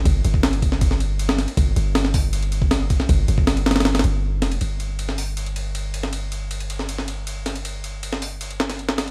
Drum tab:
RD |x---x---x-x-x---x---x---x---x-x-|x---x---x-------x-x-x---x---x---|x---x---x-x-xxxxx-xxx-------x-x-|x---x---x-------x-x-x---x---x---|
HH |--------------------------------|------------o-------------------|--------------------------------|------------o-------------------|
SD |--------o-----o---o-------o-o---|--------o-o-------------o-----o-|--------o---ooooo-oo--------o---|----------o-------------------o-|
BD |o-----o-----o---o---------------|o-----------o---------o-----o---|o-----o-------------------------|--------------------------------|

RD |x---x---x-x-x---x---x---x---x-x-|x---x---x-------x-x---x-x---x-x-|
HH |--------------------------------|------------o-------------------|
SD |--------------o---o---------o---|----------o---------o-o---o-o---|
BD |--------------------------------|--------------------------------|